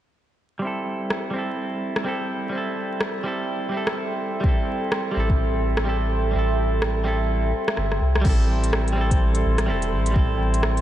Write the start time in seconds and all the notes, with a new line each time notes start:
0.59 G3 C4 A4 E5 G5 C6
0.65 E4 A4
1.10 cross-stick
1.31 G3 C4
1.36 E4 A4
1.96 cross-stick
2.04 G3 C4 E4
2.08 A4
2.49 G3 C4
2.55 E4 A4
3.01 cross-stick
3.24 G3 C4 E4 A4
3.69 G3 C4
3.74 E4 A4
3.87 cross-stick
4.41 G3 C4, kick
4.46 E4 A4
4.92 cross-stick
5.11 G3 C4
5.16 A1 E4 A4
5.30 kick
5.77 cross-stick
5.85 G3 C4 E4
5.89 A4
6.31 A1 G3 C4
6.36 E4 A4
6.82 cross-stick
7.04 G3 C4 E4 A4
7.68 cross-stick
7.77 G1, cross-stick
7.92 cross-stick
8.01 C2
8.15 cross-stick
8.21 A1 G3 C4 A4 E5 C6, kick, crash
8.26 E4 A4 G5
8.64 closed hi-hat
8.73 cross-stick
8.88 closed hi-hat
8.93 G3 C4
8.98 E4 A4
9.11 kick, closed hi-hat
9.35 closed hi-hat
9.45 A1
9.58 cross-stick, closed hi-hat
9.66 E1 G3 C4 E4
9.70 A4
9.82 closed hi-hat
9.92 A1
10.06 closed hi-hat
10.11 G3 C4
10.16 E4 A4, kick
10.54 closed hi-hat
10.63 cross-stick
10.77 closed hi-hat